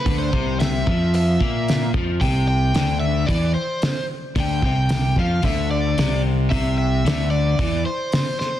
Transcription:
<<
  \new Staff \with { instrumentName = "Overdriven electric guitar" } { \time 4/4 \key c \major \tempo 4 = 112 b'16 c''8. e''4 e''4. r8 | g''8 g''4 e''8 d''8 c''4 r8 | g''8 g''4 f''8 e''8 d''4 r8 | e''8 e''4 d''4 c''4 c''8 | }
  \new Staff \with { instrumentName = "Overdriven electric guitar" } { \clef bass \time 4/4 \key c \major d8 c4 f4 bes4 f8 | c4 d4 e8 r4. | d8 c4 f8 d4 c4 | c4 d4 e8 r4. | }
  \new Staff \with { instrumentName = "Fingered electric bass" } { \clef bass \time 4/4 \key c \major d,8 c,4 f,4 bes,4 f,8 | c,4 d,4 e,8 r4. | d,8 c,4 f,8 d,4 c,4 | c,4 d,4 e,8 r4. | }
  \new DrumStaff \with { instrumentName = "Drums" } \drummode { \time 4/4 <hho bd>8 bd8 <hho sn>8 bd8 hho8 bd8 <hho sn>8 bd8 | <hho bd>4 <hho sn>4 <hho bd>4 <hho sn>4 | <hho bd>8 bd8 <hho sn>8 bd8 <hho bd>4 <hho sn>4 | <hho bd>4 <hho sn>4 <hho bd>4 <hho sn>8 sn8 | }
>>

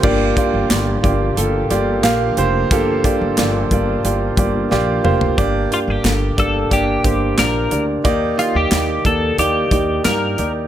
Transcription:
<<
  \new Staff \with { instrumentName = "Clean electric guitar" } { \time 4/4 \key g \minor \tempo 4 = 90 r1 | r1 | r8 f'16 g'8. a'8 g'4 bes'8. r16 | r8 f'16 g'8. a'8 g'4 bes'8. r16 | }
  \new Staff \with { instrumentName = "Upright piano" } { \time 4/4 \key g \minor <bes f' g' d''>8 <bes f' g' d''>8 <bes f' g' d''>8 <bes f' g' d''>8 <bes f' g' a'>8 <bes f' g' d''>8 <bes f' g' f''>8 <bes f' g' c''>8 | <bes f' g' a'>8 <bes f' g' d''>8 <bes f' g' d''>8 <bes f' g' d''>8 <bes f' g' d''>8 <bes f' g' d''>8 <bes f' g' d''>8 <bes f' g' c''>8 | <bes d' g' d''>8 <bes d' g' d''>8 <bes d' g' a'>8 <bes d' g' d''>8 <bes d' g' d''>8 <bes d' g' c''>8 <bes d' g' d''>8 <bes d' g' d''>8 | <bes ees' g' d''>8 <bes ees' g'>8 <bes ees' g' d''>8 <bes ees' g' d''>8 <bes ees' g' d''>8 <bes ees' g' d''>8 <bes ees' g' d''>8 <bes ees' g' d''>8 | }
  \new Staff \with { instrumentName = "Upright piano" } { \clef bass \time 4/4 \key g \minor g,4. r2 r8 | g,4. r2 r8 | g,4. r2 r8 | ees4. r2 r8 | }
  \new Staff \with { instrumentName = "String section" } { \time 4/4 \key g \minor << { g'1 | f'1 | r1 | r1 | } \\ { <f bes d'>1~ | <f bes d'>1 | r1 | r1 | } >> }
  \new Staff \with { instrumentName = "Upright bass" } { \clef bass \time 4/4 \key g \minor g,,8 r16 g,,16 g,,8 g,,8 g,,8 g,,8 bes,,8 f,,8 | g,,8 r16 g,,16 g,,8 g,,8 g,,8 g,,8 bes,,8 f,,8 | g,,8 r16 g,,16 g,,8 g,,8 g,,8 g,,8 bes,,8 d,8 | ees,8 r16 ees,16 ees,8 ees,8 ees,8 ees,8 g,8 ees,8 | }
  \new DrumStaff \with { instrumentName = "Drums" } \drummode { \time 4/4 <cymc bd>8 <hh bd>8 <hc hh sn>8 <hh bd>8 hh8 hh8 <hc hh sn>8 hh8 | <hh bd>8 <hh bd>8 <hc hh sn>8 <hh bd>8 hh8 <hh bd>8 sn8 toml16 tomfh16 | <hh bd>8 hh8 <hc hh sn>8 <hh bd>8 <hh bd>8 <hh bd>8 <hc hh sn>8 hh8 | <hh bd>8 hh8 <hc hh sn>8 <hh bd>8 hh8 <hh bd>8 <hc hh sn>8 hh8 | }
>>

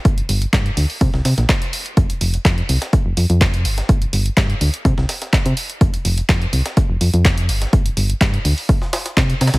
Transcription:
<<
  \new Staff \with { instrumentName = "FM bass" } { \clef bass \time 4/4 \key g \dorian \tempo 4 = 125 g,,16 r16 g,,16 r16 g,16 r16 d,16 r16 c16 c,16 c16 bes,,16 r4 | f,,16 r16 f,,16 r16 f,16 r16 c,16 r8 f,,16 f,16 f,8. g,,16 r16 | g,,16 r16 g,,16 r16 g,16 r16 d,16 r16 c16 c,16 r8. c16 r8 | f,,16 r16 f,,16 r16 f,16 r16 c,16 r8 f,,16 f,16 f,8. g,,16 r16 |
g,,16 r16 g,,16 r16 g,16 r16 d,16 r4 r16 c16 r16 c16 c,16 | }
  \new DrumStaff \with { instrumentName = "Drums" } \drummode { \time 4/4 <hh bd>16 hh16 <hh hho>16 hh16 <hc hh bd sn>16 hh16 <hh hho>16 hho16 <hh bd>16 sn16 <hh hho sn>16 <hh sn>16 <hc hh bd sn>16 hh16 <hh hho>16 hh16 | <hh bd>16 hh16 <hh hho>16 hh16 <hc hh bd sn>16 hh16 <hh hho>16 <hh sn>16 <hh bd>8 <hh hho>16 hh16 <hc hh bd sn>16 hh16 <hh hho>16 <hh sn>16 | <hh bd>16 hh16 <hh hho>16 hh16 <hc hh bd sn>16 hh16 <hh hho>16 hh16 <hh bd>16 sn16 <hh hho sn>16 <hh sn>16 <hc hh bd sn>16 hh16 <hh hho>16 hh16 | <hh bd>16 hh16 <hh hho>16 hh16 <hc hh bd sn>16 hh16 <hh hho>16 <hh sn>16 <hh bd>8 <hh hho>16 hh16 <hc hh bd sn>16 hh16 <hh hho>16 <hh sn>16 |
<hh bd>16 hh16 <hh hho>16 hh16 <hc hh bd sn>16 hh16 <hh hho>16 hho16 <hh bd>16 sn16 <hh hho sn>16 <hh sn>16 <hc hh bd sn>16 hh16 <hh hho sn>32 <hh sn>32 <hh sn>16 | }
>>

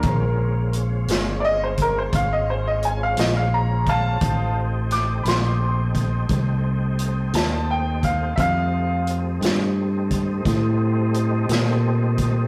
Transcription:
<<
  \new Staff \with { instrumentName = "Upright piano" } { \time 12/8 \key f \mixolydian \tempo 4. = 58 bes'4 r4 <d'' ees''>16 c''16 bes'16 c''16 f''16 ees''16 c''16 ees''16 aes''16 f''16 ees''16 f''16 bes''8 <f'' a''>8~ | <f'' a''>8 r8 d'''8 <b'' c'''>2. a''8 g''8 f''8 | <e'' f''>4 r1 r4 | }
  \new Staff \with { instrumentName = "Tonewheel organ" } { \time 12/8 \key f \mixolydian <aes c' des' f'>1. | <a c' ees' g'>1. | <g a c' ees'>1. | }
  \new Staff \with { instrumentName = "Fingered electric bass" } { \clef bass \time 12/8 \key f \mixolydian bes,,4. g,,4. aes,,4. bes,,4. | a,,4. bes,,4. c,4. ees,4. | f,4. g,4. a,4. bes,4. | }
  \new DrumStaff \with { instrumentName = "Drums" } \drummode { \time 12/8 <hh bd>4 hh8 <hh sn>4 <hh bd>8 <hh bd>4 hh8 <hh sn>4 <hh bd>8 | <hh bd>4 <hh sn>8 <hh sn>4 <hh bd>8 <hh bd>4 hh8 <hh sn>4 <hh bd>8 | <hh bd>4 hh8 <hh sn>4 <hh bd>8 <hh bd sn>4 hh8 <hh sn>4 <hh bd>8 | }
>>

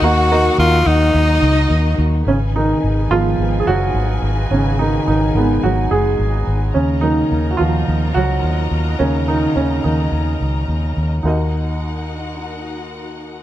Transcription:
<<
  \new Staff \with { instrumentName = "Violin section" } { \time 4/4 \key ees \minor \tempo 4 = 107 <ges' ges''>2 <ees' ees''>4. r8 | r1 | r1 | r1 |
r1 | r1 | }
  \new Staff \with { instrumentName = "String section" } { \time 4/4 \key ees \minor <ees ges bes ges'>1 | <ees' aes' ces'' aes''>1~ | <ees' aes' ces'' aes''>1 | <ees' bes' ees'' bes''>1~ |
<ees' bes' ees'' bes''>1 | <ees' ges' bes' ges''>1 | }
  \new Staff \with { instrumentName = "Tenor saxophone" } { \time 4/4 \key ees \minor ges'4 f'8 ees'2 r8 | r1 | r1 | r1 |
r1 | r1 | }
  \new Staff \with { instrumentName = "Grand piano" } { \time 4/4 \key ees \minor <bes ees' ges' bes' ees''>8 <bes ees' ges' bes' ees''>4. r2 | des'8 ees'4 f'8.~ f'32 aes'32 ges'4 r8 | des'8 ees'8 ees'4 ges'8 aes'4 r8 | des'8 ees'8.~ ees'32 ges'32 f'4 ges'4 r8 |
des'8 ees'8 des'8 ees'2 r8 | <ees' ges' bes' ees''>1 | }
  \new Staff \with { instrumentName = "Grand piano" } { \clef bass \time 4/4 \key ees \minor << { ees4 r2. | r4. <ees aes ces'>8 r2 | r4. <ees aes ces'>8 r2 | r8 <ees ges bes>2.~ <ees ges bes>8 |
<ees ges bes>4. r2 r8 | ees,1 | } \\ { r1 | des8 ees4 f4 ges4 r8 | des8 ees8 ees4 ges8 aes4 r8 | des8 r4 f4 ges4 r8 |
des8 ees8 des8 ees2 r8 | r1 | } >> }
  \new Staff \with { instrumentName = "Fingered electric bass" } { \clef bass \time 4/4 \key ees \minor ees,4 ees,8 ees,8 ees,8 des,8 ees,8 ees,8 | aes,,4 aes,,8 aes,,8 aes,,8 ges,,8 aes,,8 aes,,8 | aes,,4 aes,,8 aes,,8 aes,,8 ges,,8 aes,,8 aes,,8 | ees,4 ees,8 ees,8 ees,8 des,8 ees,8 ees,8 |
ees,4 ees,8 ees,8 ees,8 des,8 ees,8 ees,8 | ees,1 | }
>>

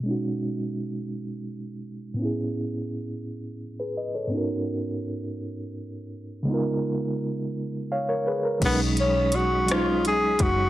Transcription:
<<
  \new Staff \with { instrumentName = "Tonewheel organ" } { \time 6/8 \key b \lydian \tempo 4. = 56 r2. | r2. | r2. | r2. |
<gis cis'' dis'' b''>2. | }
  \new Staff \with { instrumentName = "Tenor saxophone" } { \time 6/8 \key b \lydian r2. | r2. | r2. | r2. |
b8 cis'8 fis'8 eis'8 gis'8 fis'8 | }
  \new Staff \with { instrumentName = "Reed electric piano" } { \time 6/8 \key b \lydian << { r2. | r2 r16 <gis' b'>16 <b' dis''>16 <a' cis''>16~ | <a' cis''>16 r2 r8. | r2 <cis'' eis''>16 <ais' cis''>16 <gis' b'>16 ais'16~ |
ais'16 r2 r8. | } \\ { <b, gis cis' dis' fis'>2. | <a, b cis' e' gis'>2. | <gis, b cis' dis' fis' ais'>2. | <cis gis b dis' eis' ais'>2. |
<fis gis cis' dis'>4. <fis gis cis' dis'>4. | } >> }
  \new Staff \with { instrumentName = "Fingered electric bass" } { \clef bass \time 6/8 \key b \lydian r2. | r2. | r2. | r2. |
b,,2~ b,,8 fis,,8 | }
  \new DrumStaff \with { instrumentName = "Drums" } \drummode { \time 6/8 r4. r4. | r4. r4. | r4. r4. | r4. r4. |
<cymc hh bd>8 hh8 hh8 <hh ss>8 hh8 <hh bd>8 | }
>>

